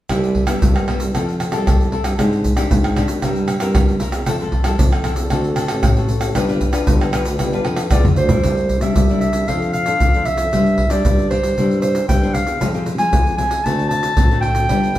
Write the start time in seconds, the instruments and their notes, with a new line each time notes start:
0.09 tuba C2, nylon-string guitar C3 G3 B3 E4, pandeiro, tamborim, shaker, surdo
0.24 pandeiro, shaker
0.35 pandeiro, surdo
0.47 tuba G2, nylon-string guitar G3 B3 E4, pandeiro, tamborim, shaker
0.62 tuba C2, nylon-string guitar G2, pandeiro, shaker, surdo
0.76 pandeiro, tamborim, shaker
0.87 nylon-string guitar G3 B3 E4, pandeiro, tamborim
0.99 tuba C2, pandeiro, shaker
1.14 tuba F2, nylon-string guitar F3 C4 E4 A4, pandeiro, tamborim, shaker, surdo
1.29 pandeiro, shaker
1.40 pandeiro, tamborim, shaker
1.51 tuba C2, nylon-string guitar C4 E4 A4, pandeiro, tamborim, shaker
1.67 nylon-string guitar C3, pandeiro, tamborim, shaker, surdo
1.81 pandeiro, shaker
1.92 nylon-string guitar C4 E4 A4, pandeiro
2.04 tuba G2, pandeiro, tamborim, shaker
2.18 tuba G#2, nylon-string guitar G#3 C4 D4 G4, pandeiro, tamborim, shaker, surdo
2.33 pandeiro, shaker
2.44 pandeiro, shaker, surdo
2.56 tuba D#2, nylon-string guitar C4 D4 G4, pandeiro, tamborim, shaker
2.70 tuba G#2, nylon-string guitar D#3, pandeiro, shaker, surdo
2.84 pandeiro, tamborim, shaker
2.96 nylon-string guitar C4 D4 G4, pandeiro, tamborim, shaker
3.08 tuba D#2, pandeiro, shaker
3.22 tuba G2, nylon-string guitar G3 C4 E4 A#4, pandeiro, tamborim, shaker, surdo
3.36 pandeiro, shaker
3.48 pandeiro, tamborim, shaker
3.60 tuba G2, nylon-string guitar C4 E4 A#4, pandeiro, tamborim, shaker
3.75 nylon-string guitar G3, pandeiro, tamborim, shaker, surdo
3.88 pandeiro, shaker
4.00 nylon-string guitar C4 E4 A#4, pandeiro, shaker
4.12 tuba E2, pandeiro, tamborim, shaker
4.26 tuba F2, nylon-string guitar F3 C4 E4 A4, pandeiro, tamborim, shaker, surdo
4.40 nylon-string guitar C4 E4 A4, pandeiro, shaker
4.52 pandeiro, surdo
4.64 tuba C2, nylon-string guitar C4 E4 A4, pandeiro, tamborim, shaker
4.79 tuba F2, nylon-string guitar C3, pandeiro, shaker, surdo
4.92 pandeiro, tamborim, shaker
5.04 nylon-string guitar C4 E4 A4, pandeiro, tamborim, shaker
5.16 tuba E2, pandeiro, shaker
5.30 tuba D2, nylon-string guitar D3 C4 F#4 A4, pandeiro, tamborim, shaker, surdo
5.44 pandeiro, shaker
5.56 nylon-string guitar C4 F#4 A4, pandeiro, tamborim, shaker
5.68 tuba A1, pandeiro, tamborim, shaker
5.83 nylon-string guitar A2, pandeiro, tamborim, shaker, surdo
5.97 nylon-string guitar C4 F#4 A4, pandeiro, shaker
6.09 pandeiro, shaker
6.21 tuba A1, pandeiro, tamborim, shaker
6.35 tuba G1, nylon-string guitar G3 D4 F4 B4, pandeiro, tamborim, shaker, surdo
6.48 nylon-string guitar D4 F4 B4, pandeiro, shaker
6.61 pandeiro, shaker, surdo
6.72 nylon-string guitar D4 F4 B4, pandeiro, tamborim, shaker
6.87 tuba G1, nylon-string guitar D3, pandeiro, shaker, surdo
7.01 pandeiro, tamborim, shaker
7.13 nylon-string guitar D4 F4 B4, pandeiro, tamborim, shaker
7.25 tuba D2, pandeiro, shaker
7.39 tuba G1, nylon-string guitar G3, pandeiro, tamborim, shaker, surdo
7.53 nylon-string guitar D4 F4 B4, pandeiro, shaker
7.65 tuba F2, pandeiro, tamborim
7.76 pandeiro, tamborim, shaker
7.91 tuba E2, nylon-string guitar D3 D4 F4 B4, clarinet D5, pandeiro, tamborim, shaker, surdo
8.05 surdo, pandeiro, shaker
8.16 tuba D2, clarinet C5, pandeiro, shaker
8.29 nylon-string guitar G3 D4 E4, pandeiro, shaker, surdo
8.43 tuba C2, nylon-string guitar C3, pandeiro, shaker, surdo
8.57 pandeiro, shaker
8.69 pandeiro, shaker, surdo
8.81 tuba C3, nylon-string guitar G3 D4 E4, clarinet E5, pandeiro, shaker
8.96 tuba C2, nylon-string guitar G3, pandeiro, shaker, surdo
9.10 nylon-string guitar G3 D4 E4, pandeiro, shaker
9.20 clarinet E5, pandeiro, shaker
9.33 tuba C2, pandeiro, shaker
9.48 tuba F2, nylon-string guitar F3 D4 A4 C5, clarinet F5, pandeiro, shaker, surdo
9.62 pandeiro, shaker
9.73 clarinet F5, pandeiro, shaker
9.86 nylon-string guitar D4 A4 C5, pandeiro, shaker
10.00 tuba F2, nylon-string guitar C3, pandeiro, shaker, surdo
10.14 nylon-string guitar D4 A4 C5, pandeiro, shaker
10.25 clarinet E5, pandeiro, shaker
10.38 tuba F2, pandeiro, shaker
10.52 tuba G2, nylon-string guitar G3 D4 G4 C5, pandeiro, shaker, surdo
10.66 pandeiro, shaker
10.78 pandeiro, surdo
10.90 tuba G3, nylon-string guitar D4 G4 C5, clarinet D5, pandeiro, shaker
11.05 tuba G2, nylon-string guitar D3, pandeiro, shaker, surdo
11.19 pandeiro, shaker
11.30 nylon-string guitar D4 G4 C5, clarinet C5, pandeiro
11.42 tuba G2, pandeiro, shaker
11.57 tuba G2, nylon-string guitar G3 D4 E4 C5, pandeiro, shaker, surdo
11.71 pandeiro, shaker
11.82 clarinet C5, pandeiro, shaker
11.95 pandeiro, shaker
12.09 tuba G2, nylon-string guitar G3 D4 E4 C5, clarinet G5, pandeiro, shaker, surdo
12.23 nylon-string guitar D4 E4 C5, pandeiro, shaker
12.34 clarinet F5, pandeiro, shaker
12.46 tuba E2, pandeiro, shaker
12.61 tuba F2, nylon-string guitar F3 G#3 C4 G4, pandeiro, shaker, surdo
12.74 nylon-string guitar G#3 C4 G4, pandeiro, shaker
12.86 pandeiro, shaker
12.98 tuba F3, nylon-string guitar G#3 C4, clarinet G#5, pandeiro, shaker
13.13 tuba F2, nylon-string guitar C3, pandeiro, shaker, surdo
13.27 pandeiro, shaker
13.37 nylon-string guitar G#3 C4 G4, clarinet G#5, pandeiro, shaker
13.51 pandeiro, shaker
13.64 tuba D2, nylon-string guitar D3 A3 C4 F#4, clarinet A5, pandeiro, shaker, surdo
13.79 pandeiro, shaker
13.89 clarinet A5, pandeiro, shaker
14.03 pandeiro, shaker
14.17 tuba D2, nylon-string guitar A2 A3 C4 F#4, pandeiro, shaker, surdo
14.31 nylon-string guitar A3 C4 F#4, pandeiro, shaker
14.41 clarinet G5, pandeiro
14.54 tuba D2, pandeiro, shaker
14.69 tuba G1, nylon-string guitar G3 B3 D4 G4, pandeiro, shaker, surdo
14.83 pandeiro, shaker
14.95 nylon-string guitar B3 D4, pandeiro, shaker, surdo